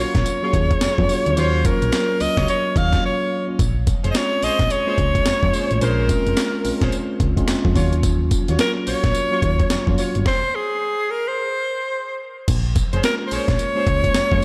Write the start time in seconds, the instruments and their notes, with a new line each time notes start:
Already playing: tine electric piano F#3 A#3 C#4 F4, horn section F4 F#4
0.00 horn section C#5, alto saxophone C#5
0.15 fm bass A#1, kick, snare, closed hi-hat
0.26 closed hi-hat, tambourine
0.42 tine electric piano F#3 A#3 C#4 G#4, horn section F4 F#4 C#5
0.53 fm bass D#2, kick, closed hi-hat
0.71 kick, closed hi-hat
0.81 fm bass F2, snare, closed hi-hat, tambourine
0.98 fm bass F2, tine electric piano F#3 A#3 C#4 F4, kick
1.09 horn section F4 F#4 C#5, open hi-hat, tambourine
1.26 fm bass D2, closed hi-hat
1.36 fm bass D#2, horn section F4 F#4 C#5, alto saxophone C5, closed hi-hat, tambourine
1.64 tine electric piano F#3 A#3 C#4 F4, alto saxophone A#4, kick, closed hi-hat, tambourine
1.82 fm bass A#1, closed hi-hat
1.92 snare, closed hi-hat, tambourine
2.20 fm bass C#2, tine electric piano F#3 A#3 C#4 F4, alto saxophone D#5, open hi-hat, tambourine
2.37 fm bass C#2, horn section F4 F#4 C#5, kick, snare, closed hi-hat
2.48 alto saxophone C#5, closed hi-hat, tambourine
2.76 fm bass D#2, alto saxophone F5, kick, closed hi-hat
2.92 tine electric piano F#3 A#3 C#4 F4, kick, snare, closed hi-hat
3.05 alto saxophone C#5
3.48 tine electric piano F#3 A#3 C#4 F4
3.59 fm bass A#1, kick, closed hi-hat, tambourine
3.87 kick, closed hi-hat, tambourine
4.04 fm bass F1, horn section C#4 G#4 C5, closed hi-hat
4.11 tine electric piano G#3 C4 C#4, alto saxophone D#5, snare, closed hi-hat, tambourine
4.15 tine electric piano F4, alto saxophone C#5
4.42 fm bass A#1, horn section C#4 G#4 C5, alto saxophone D#5, open hi-hat, tambourine
4.59 fm bass A#1, kick, snare, closed hi-hat
4.70 alto saxophone C#5, closed hi-hat, tambourine
4.87 tine electric piano G#3 A#3 C#4 F4, horn section C#4 G#4 C5
4.98 fm bass C#2, kick, closed hi-hat
5.15 kick, closed hi-hat
5.26 fm bass F2, snare, closed hi-hat, tambourine
5.42 fm bass F2, tine electric piano G#3 A#3 C#4 F4, kick
5.53 horn section C#4 G#4 C5, open hi-hat, tambourine
5.71 fm bass A1, closed hi-hat
5.81 fm bass A#1, horn section C#4 G#4 C5, alto saxophone A#4, closed hi-hat, tambourine
6.08 tine electric piano G#3 C4 C#4 F4, kick, closed hi-hat, tambourine
6.26 fm bass F1, closed hi-hat
6.37 snare, closed hi-hat, tambourine
6.64 fm bass A#1, tine electric piano G#3 C4 C#4 F4, open hi-hat, tambourine
6.81 fm bass A#1, horn section C#4 G#4 C5, kick, snare, closed hi-hat
6.92 closed hi-hat, tambourine
7.20 fm bass C#2, kick, closed hi-hat
7.36 tine electric piano G#3 C4 C#4 F4, kick, closed hi-hat
7.48 fm bass F2, snare, closed hi-hat, tambourine
7.65 fm bass F2, kick
7.75 fm bass D#2, tine electric piano F#3 A#3 C#4 F4, horn section F4 F#4 C#5, kick, open hi-hat, tambourine
7.93 closed hi-hat
8.03 kick, closed hi-hat, tambourine
8.31 kick, closed hi-hat, tambourine
8.48 fm bass D#2, horn section F4 F#4 C#5, closed hi-hat
8.58 tine electric piano F#3 A#3 C#4 F4, alto saxophone A#4, snare, closed hi-hat, tambourine
8.86 fm bass A#1, horn section F4 F#4 C#5, alto saxophone C#5, open hi-hat, tambourine
9.04 fm bass A#1, kick, snare, closed hi-hat
9.15 closed hi-hat, tambourine
9.31 tine electric piano F#3 A#3 C#4 F4, horn section F4 F#4 C#5
9.42 fm bass D#2, kick, closed hi-hat
9.60 kick, closed hi-hat
9.70 fm bass F2, snare, closed hi-hat, tambourine
9.87 fm bass F2, tine electric piano F#3 A#3 C#4 F4, kick
9.98 horn section F4 F#4 C#5, open hi-hat, tambourine
10.15 fm bass G1, closed hi-hat
10.26 alto saxophone C5, kick, snare
10.55 alto saxophone G#4
11.11 alto saxophone A#4
11.28 alto saxophone C5
12.48 fm bass A#1, kick, closed hi-hat, crash, tambourine
12.76 kick, closed hi-hat, tambourine
12.92 fm bass F1, horn section C#4 G#4 C5, closed hi-hat
13.03 tine electric piano G#3 A#3 C#4 F4, alto saxophone A#4, snare, closed hi-hat, tambourine
13.27 alto saxophone C5
13.31 fm bass A#1, horn section C#4 G#4 C5, alto saxophone C#5, open hi-hat, tambourine
13.48 fm bass A#1, kick, snare, closed hi-hat
13.59 closed hi-hat, tambourine
13.75 tine electric piano G#3 A#3 C#4 F4, horn section C#4 G#4 C5
13.87 fm bass C#2, kick, closed hi-hat
14.04 kick, closed hi-hat
14.14 fm bass F2, snare, closed hi-hat, tambourine
14.31 fm bass F2, tine electric piano G#3 A#3 C#4 F4, kick